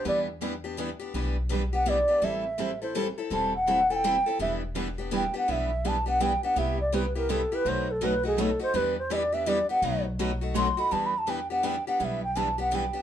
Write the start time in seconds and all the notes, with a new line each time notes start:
0.05 E2 E3 G3 B3 D4 E4 G4 B4 D5
0.41 E3 G3 B3 D4 E4 G4 B4
0.64 B3 D4 G4
0.77 E3 G3 B3 D4 E4 G4 B4
0.99 B3 D4 G4
1.14 B1 E3 G3 B3 D4 E4 G4 B4
1.49 E3 G3 B3 D4 E4 G4 B4
1.73 B3 D4 G4 F#5
1.86 E3 G3 B3 D4 E4 G4 B4 D5
2.08 B3 D4 G4
2.22 A1 E3 G3 C4 E4 A4 E5
2.58 E3 G3 C4 E4 A4
2.82 C4 E4 A4 C5
2.95 E3 G3 C4 E4 A4
3.18 C4 E4 A4
3.30 E1 E3 G3 C4 E4 A4 A5
3.56 F#5
3.67 E3 G3 C4 E4 A4
3.90 C4 E4 A4 G#5
3.96 G5
4.04 E3 G3 C4 E4 A4
4.26 C4 E4 A4
4.39 E1 E3 G3 B3 D4 E4 G4 B4 E5
4.75 E3 G3 B3 D4 E4 G4 B4
4.98 B3 D4 G4
5.11 E3 G3 B3 D4 E4 G4 B4
5.16 G5
5.34 B3 D4 G4 F#5
5.48 B1 E3 G3 B3 D4 E4 G4 B4 E5
5.85 E3 G3 B3 D4 E4 G4 B4 A5
6.06 B3 D4 G4 F#5
6.20 E3 G3 B3 D4 E4 G4 B4 G5
6.43 B3 D4 G4 F#5
6.56 C2 C3 G3 B3 E4 G4 E5
6.81 D5
6.92 C3 G3 B3 E4 G4 B4
7.15 B3 E4 G4 A#4
7.29 C3 G3 B3 E4 G4 A4
7.52 B3 E4 G4 B4
7.65 B1 B2 F#3 A3 D#4 F#4 B4 C5
7.91 A4
8.01 B2 F#3 A3 D#4 F#4 B4
8.23 A3 D#4 F#4 G#4
8.38 B2 F#3 A3 D#4 F#4 A4 B4
8.59 A3 D#4 F#4 C5
8.74 E2 E3 G3 B3 D4 E4 G4 B4
8.99 C5
9.10 E3 G3 B3 D4 E4 G4 B4 D#5
9.16 D5
9.32 B3 D4 G4 E5
9.46 E3 G3 B3 D4 E4 G4 B4 D5
9.69 B3 D4 G4 F#5
9.82 B1 B2 F#3 A3 D#4 F#4 B4
10.19 B2 F#3 A3 D#4 F#4 B4
10.41 A3 D#4 F#4
10.55 B2 F#3 A3 D#4 F#4 B4 C6
10.77 A3 D#4 F#4 B5
10.91 E2 E3 G3 B3 D4 E4 G4 B4 A5
11.06 B5
11.18 A5
11.27 E3 G3 B3 D4 E4 G4 B4 G5
11.50 B3 D4 G4 F#5
11.63 E3 G3 B3 D4 E4 G4 B4 G5
11.87 B3 D4 G4 F#5
11.99 B1 E3 G3 B3 D4 E4 G4 B4 F#5
12.04 E5
12.24 G5
12.36 E3 G3 B3 D4 E4 G4 B4 A5
12.58 B3 D4 G4 F#5
12.71 E3 G3 B3 D4 E4 G4 B4 G5
12.93 B3 D4 G4